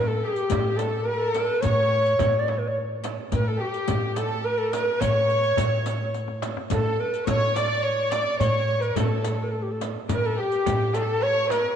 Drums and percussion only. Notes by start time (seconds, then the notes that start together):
0.23 tombak ka
0.36 riq
0.50 riq, tombak dum, frame drum
0.79 riq, tombak tek, frame drum
1.34 riq, tombak tek, frame drum
1.62 riq, frame drum, tombak dum
1.93 tombak ka
2.06 riq
2.19 riq, frame drum, tombak dum
2.48 tombak tek, frame drum
3.04 riq, tombak tek, frame drum
3.32 riq, frame drum, tombak dum
3.61 tombak ka
3.74 riq
3.88 riq, frame drum, tombak dum
4.16 riq, tombak tek, frame drum
4.73 riq, tombak tek, frame drum
5.01 riq, frame drum, tombak dum
5.30 riq, tombak ka
5.43 riq, tombak ka
5.57 riq, tombak dum, frame drum
5.86 riq, tombak tek, frame drum
6.14 riq, tombak tek
6.28 tombak ka
6.42 riq, tombak tek, frame drum
6.57 tombak ka
6.70 riq, tombak dum, frame drum
6.99 tombak ka
7.14 riq
7.27 riq, tombak dum, frame drum
7.56 riq, tombak tek, frame drum
8.11 riq, tombak tek, frame drum
8.40 riq, tombak dum, frame drum
8.68 tombak ka
8.82 riq
8.96 riq, tombak dum, frame drum
9.24 riq, tombak tek, frame drum
9.81 riq, tombak tek, frame drum
10.09 riq, tombak dum, frame drum
10.37 tombak ka
10.52 riq
10.66 riq, frame drum, tombak dum
10.94 riq, tombak tek, frame drum
11.50 riq, tombak tek, frame drum